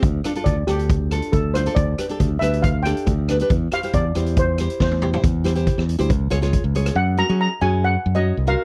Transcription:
<<
  \new Staff \with { instrumentName = "Steel pan" } { \time 4/4 \key c \mixolydian \tempo 4 = 138 r4 d''8 g'4. a'8 c''8 | d''4. e''8 f''8 g''4. | r8 f''8 d''4 c''4 c''4 | r1 |
\key fis \major fis''8 ais''8 ais''8 gis''8 fis''8. dis''8. eis''8 | }
  \new Staff \with { instrumentName = "Nylon-string guitar" } { \time 4/4 \key c \mixolydian r8 <d' f' a'>16 <d' f' a'>8 r16 <d' f' a'>8 r8 <d' f' a'>8 r8 <d' f' c''>16 <d' f' a'>16 | r8 <d' g' b'>16 <d' g' a'>8 r16 <d' g' b'>8 r8 <d' g' a'>8 r8 <d' g' b'>16 <d' g' b'>16 | r8 <e' g' c''>16 <e' g' c''>8 r16 <e' g' c''>8 r8 <e' g' c''>8 r8 <e' g' c''>16 <e' g' c''>16 | r8 <e' g' c''>16 <e' g' c''>8 r8 <e' g' c''>16 r8 <f' aes' des''>16 <f' aes' des''>8 r16 <f' aes' des''>8 |
\key fis \major r8 <cis' fis' ais'>16 <cis' fis' gis'>8 r16 <cis' fis' gis'>8. r8 <cis' fis' cis''>8 r16 <cis' fis' ais'>8 | }
  \new Staff \with { instrumentName = "Fingered electric bass" } { \clef bass \time 4/4 \key c \mixolydian d,8 r8 d,8 d,4. d,4 | d,8 r8 d,8 d,4. d,4 | e,8 r8 e,8 e,4. e,4 | e,4~ e,16 e,8 d,16 des,8 des,8. des,8. |
\key fis \major fis,8. fis8 r16 fis,4 fis,8. bis,,8 r16 | }
  \new DrumStaff \with { instrumentName = "Drums" } \drummode { \time 4/4 <hh bd>8 <hh ss>16 hh16 <hh bd>8 <hh ss>16 hh16 <hh bd>8 <hh ss>16 hh16 <hh bd>8 <hh ss>16 hh16 | <hh bd>8 <hh ss>16 hh16 <hh bd>8 <hh ss>16 hh16 <hh bd>8 <hh ss>16 hh16 <hh bd>8 <hh ss>16 hh16 | <hh bd>8 <hh ss>16 hh16 <hh bd>8 <hh ss>16 hh16 <hh bd>8 <hh ss>16 hh16 <bd sn>16 tommh16 toml16 tomfh16 | <hh bd>8 <hh ss>16 hh16 <hh bd>16 ss16 hh16 hh16 <hh bd>8 <hh ss>16 <hh ss>16 <hh bd>8 hh16 <hh ss>16 |
r4 r4 r4 r4 | }
>>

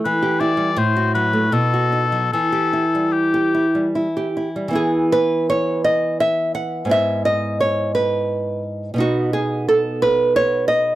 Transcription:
<<
  \new Staff \with { instrumentName = "Oboe" } { \time 3/4 \key e \minor \tempo 4 = 84 b'8 d''8 c''8 b'8 a'4 | a'4 g'4 r4 | \key e \major r2. | r2. |
r2. | }
  \new Staff \with { instrumentName = "Nylon-string guitar" } { \time 3/4 \key e \minor << { e16 g'16 e'16 g16 a,16 fis'16 fis16 a16 b,16 fis'16 dis'16 fis16 | e16 g'16 e'16 g8 g'16 e'16 g16 e'16 g'16 e'16 g16 | \key e \major gis'8 b'8 cis''8 dis''8 e''8 fis''8 | e''8 dis''8 cis''8 b'4 r8 |
fis'8 gis'8 a'8 b'8 cis''8 dis''8 | } \\ { r2. | r2. | <e b e'>2. | <gis, b e'>2. |
<b, b dis'>2. | } >> }
>>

